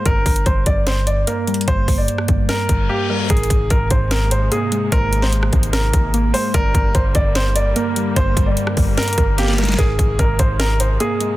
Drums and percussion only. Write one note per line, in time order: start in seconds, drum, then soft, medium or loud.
0.06 kick loud
0.06 closed hi-hat medium
0.26 kick loud
0.26 closed hi-hat soft
0.26 open hi-hat medium
0.36 closed hi-hat medium
0.46 kick medium
0.46 closed hi-hat medium
0.66 kick loud
0.66 closed hi-hat medium
0.87 snare loud
0.87 closed hi-hat medium
1.07 closed hi-hat medium
1.27 closed hi-hat medium
1.47 closed hi-hat soft
1.54 closed hi-hat medium
1.61 closed hi-hat medium
1.68 kick loud
1.68 closed hi-hat medium
1.88 kick loud
1.88 open hi-hat medium
2.08 closed hi-hat medium
2.18 cross-stick loud
2.28 kick loud
2.28 closed hi-hat medium
2.49 snare loud
2.49 closed hi-hat medium
2.69 kick medium
2.69 closed hi-hat medium
3.30 kick loud
3.30 closed hi-hat loud
3.37 closed hi-hat medium
3.43 closed hi-hat medium
3.50 kick loud
3.50 closed hi-hat medium
3.70 kick loud
3.70 closed hi-hat medium
3.90 kick loud
3.90 closed hi-hat medium
4.11 snare loud
4.11 closed hi-hat medium
4.31 closed hi-hat medium
4.52 closed hi-hat medium
4.72 closed hi-hat medium
4.92 kick loud
4.92 closed hi-hat loud
5.13 closed hi-hat medium
5.22 snare medium
5.33 closed hi-hat medium
5.43 cross-stick loud
5.53 kick loud
5.53 closed hi-hat soft
5.53 open hi-hat medium
5.63 closed hi-hat medium
5.73 snare loud
5.73 closed hi-hat medium
5.93 kick medium
5.93 closed hi-hat medium
6.14 closed hi-hat medium
6.34 open hi-hat medium
6.54 kick loud
6.54 closed hi-hat loud
6.75 kick loud
6.75 closed hi-hat medium
6.95 kick loud
6.95 closed hi-hat medium
7.15 kick loud
7.15 closed hi-hat medium
7.35 snare loud
7.35 closed hi-hat medium
7.56 closed hi-hat loud
7.76 closed hi-hat medium
7.96 closed hi-hat medium
8.16 kick loud
8.16 closed hi-hat loud
8.37 kick loud
8.37 closed hi-hat medium
8.57 closed hi-hat medium
8.67 cross-stick loud
8.77 kick loud
8.77 open hi-hat medium
8.98 snare loud
8.98 closed hi-hat medium
9.03 closed hi-hat medium
9.08 closed hi-hat medium
9.13 closed hi-hat medium
9.18 kick loud
9.18 closed hi-hat medium
9.38 snare medium
9.38 closed hi-hat medium
9.43 snare medium
9.48 snare medium
9.53 snare medium
9.58 snare medium
9.58 closed hi-hat medium
9.63 snare medium
9.63 closed hi-hat medium
9.68 snare loud
9.68 closed hi-hat medium
9.74 snare loud
9.79 kick loud
9.79 closed hi-hat loud
9.99 kick loud
9.99 closed hi-hat medium
10.19 kick medium
10.19 closed hi-hat medium
10.39 kick loud
10.39 closed hi-hat medium
10.60 snare loud
10.60 closed hi-hat medium
10.80 closed hi-hat medium
11.00 closed hi-hat medium
11.21 closed hi-hat medium